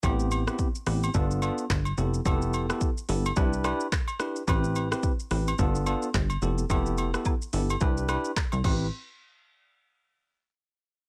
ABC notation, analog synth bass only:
X:1
M:4/4
L:1/16
Q:"Swing 16ths" 1/4=108
K:Am
V:1 name="Analog synth bass" clef=bass
A,,,4 z2 A,,,2 G,,,3 z G,,,2 F,,,2 | F,,,4 z2 G,,,2 C,,3 z4 z | A,,,4 z2 A,,,2 G,,,3 z G,,,2 F,,,2 | F,,,4 z2 G,,,2 C,,3 z2 C,, A,,,2 |
z16 |]